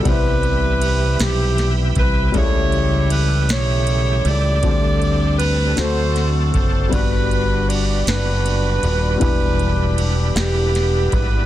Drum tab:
RD |xxxxxx|xxxxxx|xxxxxx|xxxxxx|
SD |---oo-|---o--|---oo-|---o--|
BD |o----o|o-----|o----o|o-----|

RD |xxxxxx|
SD |---oo-|
BD |o----o|